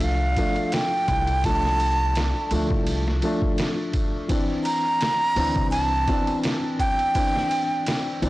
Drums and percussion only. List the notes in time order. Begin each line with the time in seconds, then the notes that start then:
0.00 ride
0.36 kick, ride
0.56 ride
0.72 snare, ride
1.08 kick, ride
1.27 ride
1.44 kick, ride
1.65 snare
1.80 ride
2.15 snare, ride
2.51 ride
2.71 kick
2.87 ride
3.08 snare
3.22 ride
3.42 kick
3.58 snare, ride
3.93 kick, ride
4.29 kick, ride
4.65 ride
5.01 snare, ride
5.36 open hi-hat
5.56 kick
5.72 ride
6.08 kick, ride
6.27 ride
6.44 snare, ride
6.79 kick, ride
6.99 ride
7.15 kick, ride
7.36 snare
7.51 ride
7.86 snare, ride
8.22 ride